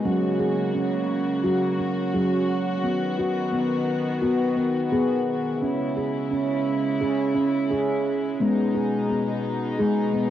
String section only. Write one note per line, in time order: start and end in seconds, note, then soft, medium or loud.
0.06 2.81 C#3 medium
0.06 2.81 A#3 medium
0.06 5.59 F#4 medium
2.83 5.59 D#3 medium
2.83 5.59 B3 medium
5.64 8.39 C#3 medium
5.64 10.30 G#3 medium
5.64 8.39 E4 medium
8.40 10.30 B2 medium
8.40 10.30 D#4 medium